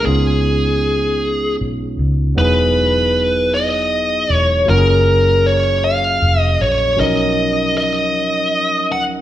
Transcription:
0.03 tine electric piano G#3 B3 C#4, lead electric guitar G#4
0.07 fingered electric bass C#2, tine electric piano D#4 F4
1.61 fingered electric bass B1
1.99 fingered electric bass C#2
2.35 fingered electric bass E1, tine electric piano F#3 B3 D#4 E4, lead electric guitar B4
2.41 tine electric piano G#4
3.54 lead electric guitar D#5
4.30 fingered electric bass E1
4.35 lead electric guitar C#5
4.66 fingered electric bass F#1, tine electric piano F#3 A#3 C#4, lead electric guitar A#4
4.70 tine electric piano F4 F#4
4.78 tine electric piano G#4
5.46 lead electric guitar C#5
5.84 lead electric guitar F5
6.22 fingered electric bass F1
6.41 lead electric guitar D#5
6.61 fingered electric bass A#1, lead electric guitar C#5
6.96 tine electric piano F#3 C#4 D#4
7.00 fingered electric bass B1, tine electric piano F3 A#4, lead electric guitar D#5
7.77 lead electric guitar D#5
8.92 fingered electric bass C#2, lead electric guitar F#5

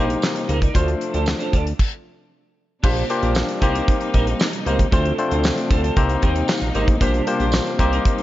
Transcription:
Already playing: analog synth bass A#1, string section C3 G3 A#3 D#4, tine electric piano A#3 D#4 G4 C5, clean electric guitar D#4
0.09 muted clean electric guitar stroke, closed hi-hat
0.22 snare, clap, tambourine
0.35 muted clean electric guitar stroke, closed hi-hat
0.48 analog synth bass C#2, clean electric guitar D#4 A#4 C5, closed hi-hat
0.61 clean electric guitar D#4 A#4 D5, kick, closed hi-hat
0.74 analog synth bass D2, string section F3 A3 D4, tine electric piano A3 D4 F4 C5, clean electric guitar F4 A4 C5, kick, closed hi-hat
0.87 muted clean electric guitar stroke, closed hi-hat
1.00 muted clean electric guitar stroke, closed hi-hat
1.13 analog synth bass D2, clean electric guitar F4 A4 C5, closed hi-hat
1.26 muted clean electric guitar stroke, snare, clap, tambourine
1.39 clean electric guitar F4 A4 C5, closed hi-hat
1.52 analog synth bass D2, clean electric guitar F4 A4 D5, kick, closed hi-hat
1.65 muted clean electric guitar stroke, closed hi-hat
1.79 kick, crash
2.83 analog synth bass A#1, string section C3 G3 A#3 D4, tine electric piano A#3 D4 F4 G4 C5, clean electric guitar D4 G4 C5, kick, crash
2.97 closed hi-hat
3.09 tine electric piano A#3 D4 F4 G4 C5, muted clean electric guitar stroke, closed hi-hat
3.22 analog synth bass A#1, clean electric guitar D4 G4 C5, closed hi-hat
3.35 snare, clap, tambourine
3.48 muted clean electric guitar stroke, closed hi-hat
3.61 analog synth bass C2, tine electric piano A#3 C4 D#4 G4 C5, clean electric guitar D#4 A#4 C5, string section D#4, kick, closed hi-hat
3.74 clean electric guitar D#4 A#4 C5, closed hi-hat
3.88 kick, closed hi-hat
4.01 muted clean electric guitar stroke, closed hi-hat
4.13 analog synth bass A#1, clean electric guitar D#4 A#4 C5, kick, closed hi-hat
4.27 muted clean electric guitar stroke, closed hi-hat
4.40 snare, clap, tambourine
4.53 muted clean electric guitar stroke, closed hi-hat
4.66 analog synth bass C#2, tine electric piano A#3 C4 D#4 G4 C5, clean electric guitar D#4 A#4 C5, closed hi-hat
4.79 muted clean electric guitar stroke, kick, closed hi-hat
4.91 analog synth bass D2, string section F3 A3 D4, tine electric piano A3 C4 D4 F4 C5, clean electric guitar F4 A4 C5, kick, closed hi-hat
5.05 closed hi-hat
5.18 tine electric piano A3 C4 D4 F4 C5, muted clean electric guitar stroke, closed hi-hat
5.31 analog synth bass D2, clean electric guitar F4 A4 C5, closed hi-hat
5.44 snare, clap, tambourine
5.57 muted clean electric guitar stroke, closed hi-hat
5.70 analog synth bass D2, clean electric guitar F4 A4 C5, tine electric piano A5, kick, closed hi-hat
5.83 clean electric guitar F4 A4 C5, closed hi-hat
5.96 analog synth bass C2, string section G3 A#3 D#4, tine electric piano A#3 C4 D#4 G4 C5 A#5, kick, closed hi-hat
6.09 muted clean electric guitar stroke, closed hi-hat
6.22 analog synth bass D#2, clean electric guitar D#4 A#4 C5, tine electric piano G5, kick, closed hi-hat
6.35 muted clean electric guitar stroke, closed hi-hat
6.48 tine electric piano F5, snare, clap, tambourine
6.61 analog synth bass A#1, muted clean electric guitar stroke, closed hi-hat
6.74 analog synth bass G#1, tine electric piano A#3 C4 D#4 G4 C5 D#5, clean electric guitar D#4 A#4 C5, closed hi-hat
6.87 analog synth bass A1, muted clean electric guitar stroke, kick, closed hi-hat
7.00 analog synth bass A#1, tine electric piano A#3 D4 F4 G4 C5, clean electric guitar D4 G4 C5, string section D4, kick, closed hi-hat
7.14 closed hi-hat
7.27 tine electric piano A#3 D4 F4 G4 C5, muted clean electric guitar stroke, closed hi-hat
7.39 analog synth bass A#1, clean electric guitar D4 G4 C5, closed hi-hat
7.52 muted clean electric guitar stroke, snare, clap, tambourine
7.66 muted clean electric guitar stroke, closed hi-hat
7.79 analog synth bass C2, tine electric piano A#3 C4 D#4 G4 C5, clean electric guitar D#4 A#4 C5, string section D#4, kick, closed hi-hat
7.92 clean electric guitar D#4 A#4 C5, closed hi-hat
8.05 kick, closed hi-hat
8.18 muted clean electric guitar stroke, closed hi-hat

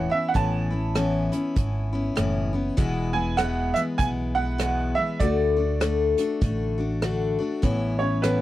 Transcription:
Already playing: steel-string acoustic guitar A2 E3 B3, upright piano F#5
0.10 steel-string acoustic guitar B3 C#4 E4, upright piano E5
0.28 upright piano F#5
0.34 upright bass A1, steel-string acoustic guitar A2 E3 B3 C#4 E4, upright piano A5, kick, closed hi-hat
0.70 steel-string acoustic guitar B3 C#4 E4
0.95 steel-string acoustic guitar A2 E3 B3 C#4 E4, cross-stick, closed hi-hat
1.32 steel-string acoustic guitar B3 C#4 E4, closed hi-hat
1.56 upright bass G#1, steel-string acoustic guitar E3 B3 C#4 E4, kick, closed hi-hat
1.93 steel-string acoustic guitar B3 C#4 E4
2.16 upright bass F#1, steel-string acoustic guitar A2 E3 B3 C#4 E4, cross-stick, closed hi-hat
2.53 steel-string acoustic guitar B3 C#4 E4
2.77 upright bass E1, steel-string acoustic guitar E2 B2 E3 G#3 B3 E4, kick, closed hi-hat
3.13 steel-string acoustic guitar E3 G#3 B3 E4, upright piano G#5
3.37 steel-string acoustic guitar E2 B2 E3 G#3 B3 E4, upright piano F#5, cross-stick, closed hi-hat
3.74 steel-string acoustic guitar E3 G#3 B3 E4, upright piano E5, closed hi-hat
3.98 upright bass B1, steel-string acoustic guitar E3 G#3 B3 E4, upright piano G#5, kick, closed hi-hat
4.35 steel-string acoustic guitar E3 G#3 B3 E4, upright piano F#5
4.58 steel-string acoustic guitar E2 B2 E3 G#3 B3 E4, cross-stick, closed hi-hat
4.95 steel-string acoustic guitar G#3 B3 E4, upright piano E5
4.99 steel-string acoustic guitar E3
5.20 upright bass D2, steel-string acoustic guitar D3 A3 D4 F#4, upright piano D5, kick, closed hi-hat
5.57 steel-string acoustic guitar A3 D4 F#4
5.80 steel-string acoustic guitar D3 A3 D4 F#4, cross-stick, closed hi-hat
6.18 steel-string acoustic guitar A3 D4 F#4, closed hi-hat
6.41 upright bass A1, steel-string acoustic guitar D3 A3 D4 F#4, kick, closed hi-hat
6.78 steel-string acoustic guitar A3 D4 F#4
7.02 steel-string acoustic guitar D3 A3 D4 F#4, cross-stick, closed hi-hat
7.39 steel-string acoustic guitar A3 D4 F#4
7.62 upright bass A1, steel-string acoustic guitar A2 E3 B3 C#4 E4, kick, closed hi-hat
7.99 steel-string acoustic guitar B3 C#4 E4, upright piano C#5
8.22 steel-string acoustic guitar A2 E3 B3 C#4 E4, upright piano B4, cross-stick, closed hi-hat

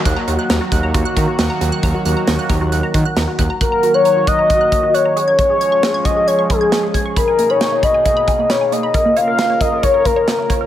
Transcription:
0.05 analog synth bass D#2, analog synth pad D#3 F#3 A#3 F#4, synth arpeggio sound F#6, kick, closed hi-hat
0.16 synth arpeggio sound A#5
0.28 analog synth bass D#2, synth arpeggio sound F#4, closed hi-hat
0.39 synth arpeggio sound F#6
0.50 analog synth bass D#2, synth arpeggio sound A#5, snare, closed hi-hat
0.61 synth arpeggio sound F#4
0.72 analog synth bass D#2, synth arpeggio sound F#6, kick, closed hi-hat
0.83 analog synth bass D#2, synth arpeggio sound A#5
0.94 analog synth bass D#2, synth arpeggio sound F#4, kick, closed hi-hat
1.05 synth arpeggio sound F#6
1.17 analog synth bass D#3, synth arpeggio sound A#5, kick, closed hi-hat
1.28 synth arpeggio sound F#4
1.39 analog synth bass D#2, synth arpeggio sound F#6, snare, closed hi-hat
1.50 synth arpeggio sound A#5
1.61 analog synth bass D#2, synth arpeggio sound F#4, closed hi-hat
1.72 synth arpeggio sound F#6
1.83 analog synth bass D#2, synth arpeggio sound A#5, kick, closed hi-hat
1.95 synth arpeggio sound F#4
2.05 analog synth bass D#2, synth arpeggio sound F#6, closed hi-hat
2.17 synth arpeggio sound A#5
2.27 analog synth bass D#2, synth arpeggio sound F#4, snare, closed hi-hat
2.39 synth arpeggio sound F#6
2.50 analog synth bass D#2, synth arpeggio sound A#5, kick, closed hi-hat
2.61 analog synth bass D#2, synth arpeggio sound F#4
2.72 analog synth bass D#2, synth arpeggio sound F#6, closed hi-hat
2.83 synth arpeggio sound A#5
2.94 analog synth bass D#3, synth arpeggio sound F#4, kick, closed hi-hat
3.05 synth arpeggio sound F#6
3.16 analog synth bass D#2, synth arpeggio sound A#5, snare, closed hi-hat
3.28 synth arpeggio sound F#4
3.39 analog synth bass D#2, synth arpeggio sound F#6, kick, closed hi-hat
3.50 synth arpeggio sound A#5
3.61 analog synth pad D#3 F#3 A#3 F#4, soft synth lead A#4, synth arpeggio sound F#6, kick, closed hi-hat
3.72 synth arpeggio sound A#5
3.83 synth arpeggio sound F#4, closed hi-hat
3.94 soft synth lead C#5, synth arpeggio sound F#6
4.05 synth arpeggio sound A#5, closed hi-hat
4.17 synth arpeggio sound F#4
4.27 soft synth lead D#5, synth arpeggio sound F#6, kick, closed hi-hat
4.39 synth arpeggio sound A#5
4.50 synth arpeggio sound F#4, kick, closed hi-hat
4.61 synth arpeggio sound F#6
4.72 synth arpeggio sound A#5, kick, closed hi-hat
4.83 synth arpeggio sound F#4
4.94 soft synth lead C#5, synth arpeggio sound F#6, closed hi-hat
5.05 synth arpeggio sound A#5
5.16 analog synth pad F3 G#3 C#4 G#4, synth arpeggio sound G#4, closed hi-hat
5.28 synth arpeggio sound G#6
5.38 soft synth lead C#5, synth arpeggio sound C#6, kick, closed hi-hat
5.50 synth arpeggio sound G#4
5.61 synth arpeggio sound G#6, closed hi-hat
5.72 synth arpeggio sound C#6
5.83 synth arpeggio sound G#4, snare, closed hi-hat
5.94 synth arpeggio sound G#6
6.05 soft synth lead D#5, synth arpeggio sound C#6, kick, closed hi-hat
6.16 synth arpeggio sound G#4
6.27 soft synth lead C#5, synth arpeggio sound G#6, closed hi-hat
6.39 synth arpeggio sound C#6
6.50 synth arpeggio sound G#4, soft synth lead G#4, kick, closed hi-hat
6.61 synth arpeggio sound G#6
6.72 synth arpeggio sound C#6, snare, closed hi-hat
6.83 synth arpeggio sound G#4
6.94 synth arpeggio sound G#6, kick, closed hi-hat
7.06 synth arpeggio sound C#6
7.16 analog synth pad B2 A#3 D#4, soft synth lead A#4, synth arpeggio sound B5, kick, closed hi-hat
7.28 synth arpeggio sound G#5
7.39 synth arpeggio sound A#3, closed hi-hat
7.50 soft synth lead C#5, synth arpeggio sound B5
7.61 synth arpeggio sound G#5, snare, closed hi-hat
7.72 synth arpeggio sound A#3
7.83 soft synth lead D#5, synth arpeggio sound B5, kick, closed hi-hat
7.94 synth arpeggio sound G#5
8.05 synth arpeggio sound A#3, kick, closed hi-hat
8.17 synth arpeggio sound B5
8.28 synth arpeggio sound G#5, kick, closed hi-hat
8.39 synth arpeggio sound A#3
8.50 soft synth lead C#5, synth arpeggio sound B5, snare, closed hi-hat
8.61 synth arpeggio sound G#5
8.72 synth arpeggio sound A#3, soft synth lead D#5, closed hi-hat
8.83 synth arpeggio sound B5
8.94 analog synth pad C#3 F4 A#4, synth arpeggio sound A#4, kick, closed hi-hat
9.05 synth arpeggio sound A#3
9.17 synth arpeggio sound C#5, soft synth lead F5, closed hi-hat
9.28 synth arpeggio sound A#4
9.38 synth arpeggio sound A#3, snare, closed hi-hat
9.50 synth arpeggio sound C#5
9.61 synth arpeggio sound A#4, soft synth lead D#5, kick, closed hi-hat
9.72 synth arpeggio sound A#3
9.83 synth arpeggio sound C#5, soft synth lead C#5, kick, closed hi-hat
9.94 synth arpeggio sound A#4
10.05 synth arpeggio sound A#3, soft synth lead A#4, kick, closed hi-hat
10.16 synth arpeggio sound C#5
10.27 synth arpeggio sound A#4, snare, closed hi-hat
10.39 synth arpeggio sound A#3
10.50 synth arpeggio sound C#5, kick, closed hi-hat
10.61 synth arpeggio sound A#4

